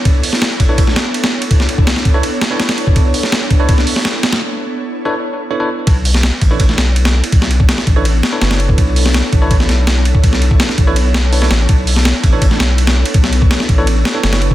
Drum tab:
RD |x---x-x-x-x-xx-x|x-x-x-x-x-x-xxx-|x---x-x-x---x-xx|----------------|
HH |--o-------------|----------------|--o-------o-----|----------------|
SD |---oo----oo--o--|-o--oo----o-oo--|---oo----o-oo-oo|----------------|
BD |o-----o-o-------|o--o--o--------o|o-----o-o-------|----------------|

RD |x---x-x-x-x-xx-x|x-x-x-x-x-x-xxx-|x---x-x-x-x-x-x-|x-x-x-x-x-x---x-|
HH |--o-------------|----------------|--o-------------|------------o---|
SD |---oo----oo--o--|-o--oo----o-oo--|---oo----oo-o---|-o--oo----o--oo-|
BD |o-----o-o-------|o--o--o--------o|o-----o-o------o|o--o--o---------|

RD |x---x-x-x-x-xx-x|x-x-x-x-x-x-xxx-|
HH |--o-------------|----------------|
SD |---oo----oo--o--|-o--oo----o-oo--|
BD |o-----o-o-------|o--o--o--------o|